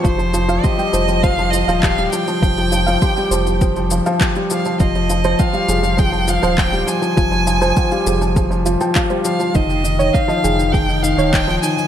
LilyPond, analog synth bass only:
\new Staff \with { instrumentName = "Analog synth bass" } { \clef bass \time 4/4 \key c \phrygian \tempo 4 = 101 f,,4 r8 f,,4~ f,,16 ees,,8. r8 | f,,4 r8 f,,4~ f,,16 r4 r16 | f,,4 r8 f,,4~ f,,16 ees,,8. r8 | f,,4 r8 f,,4~ f,,16 r4 r16 |
f,,4 r8 f,,4~ f,,16 ees,,8. r8 | }